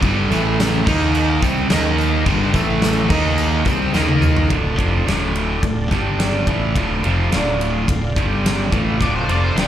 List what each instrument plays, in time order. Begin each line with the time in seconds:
0.02 fingered electric bass G1, distorted electric guitar G2 D3 G3, kick, tambourine, crash
0.30 fingered electric bass A1, distorted electric guitar A2 E3 A3, tonewheel organ A3 E4 A4 E5, tambourine, crash
0.60 snare, tambourine, crash
0.75 tambourine
0.85 fingered electric bass D#2, distorted electric guitar D#3 A#3 D#4, tonewheel organ A#3 D#4 A#4 D#5, kick, tambourine, crash
1.02 tambourine
1.15 tambourine, crash
1.42 fingered electric bass C2, distorted electric guitar C3 G3 C4, kick, tambourine, crash
1.58 tambourine
1.69 fingered electric bass D#2, distorted electric guitar D#3 A#3 D#4, tonewheel organ A#3 D#4 A#4 D#5, snare, tambourine, crash
1.86 tambourine
1.98 tambourine, crash
2.26 fingered electric bass G1, distorted electric guitar G2 D3 G3, kick, crash
2.30 tambourine
2.43 tambourine
2.53 fingered electric bass A1, distorted electric guitar A2 E3 A3, tonewheel organ A3 E4 A4 E5, kick, tambourine, crash
2.70 tambourine
2.82 snare, tambourine, crash
3.00 tambourine
3.09 fingered electric bass D#2, distorted electric guitar D#3 A#3 D#4, tonewheel organ A#3 D#4 A#4 D#5, kick, tambourine, crash
3.26 tambourine
3.38 tambourine, crash
3.52 tambourine
3.65 fingered electric bass C2, distorted electric guitar C3 G3 C4, kick, tambourine, crash
3.82 tambourine
3.93 fingered electric bass D#2, distorted electric guitar D#3 A#3 D#4, tonewheel organ A#3 D#4 A#4 D#5, snare, tambourine
4.08 high tom
4.22 mid tom, tambourine
4.36 floor tom, tambourine
4.49 fingered electric bass D1, distorted electric guitar D2 A2 D3, twelve-string acoustic guitar D3 D4 F4 A4, tonewheel organ D4 F4 A4 D5, kick, ride
4.77 fingered electric bass F1, distorted electric guitar F2 C3 F3, kick, ride
5.05 fingered electric bass D1, distorted electric guitar D2 A2 D3, twelve-string acoustic guitar D3 D4 F4 A4, ride
5.09 snare
5.34 twelve-string acoustic guitar D4 F4 A4, ride
5.61 fingered electric bass D1, distorted electric guitar D2 A2, twelve-string acoustic guitar D3 D4 F4 A4, kick, ride
5.89 fingered electric bass G1, distorted electric guitar G2 D3 G3, twelve-string acoustic guitar D4 G4 D5, tonewheel organ D4 G4 D5 G5, kick, snare, ride
6.17 twelve-string acoustic guitar G3 D4 G4 D5, snare, ride
6.46 fingered electric bass A1, distorted electric guitar A2 E3 A3, twelve-string acoustic guitar D3 A3 D4 F4 A4 D5, tonewheel organ F4 A4 D5 F5, kick, ride
6.75 fingered electric bass D1, distorted electric guitar D2 A2 D3, kick, ride
7.04 fingered electric bass F1, distorted electric guitar F2 C3 F3, ride
7.31 fingered electric bass D1, distorted electric guitar D2 A2 D3, twelve-string acoustic guitar D3 A3 D4 F4 A4 D5, snare, ride
7.59 twelve-string acoustic guitar D4 F4 A4 D5, ride
7.88 fingered electric bass D1, distorted electric guitar D2 A2, twelve-string acoustic guitar D4 F4 A4 D5, kick, ride
8.13 fingered electric bass G1, distorted electric guitar G2 D3, tonewheel organ D4 G4 D5 G5, twelve-string acoustic guitar D5, kick
8.17 distorted electric guitar G3, twelve-string acoustic guitar D4 G4, ride
8.44 twelve-string acoustic guitar G3 D4 G4 D5, snare, ride
8.71 fingered electric bass A1, distorted electric guitar A2 E3 A3, twelve-string acoustic guitar D3 A3 D4 F4 A4 D5, tonewheel organ F4 A4 D5 F5, kick, ride
9.00 fingered electric bass D1, distorted electric guitar D2 A2 D3, lead electric guitar D5, kick, ride
9.16 lead electric guitar C5
9.28 fingered electric bass F1, distorted electric guitar F2 C3 F3, lead electric guitar D5, ride
9.44 lead electric guitar C5
9.54 fingered electric bass D1, distorted electric guitar D2 A2 D3, twelve-string acoustic guitar D3 A3 D4 F4 A4 D5, snare, ride
9.59 lead electric guitar G4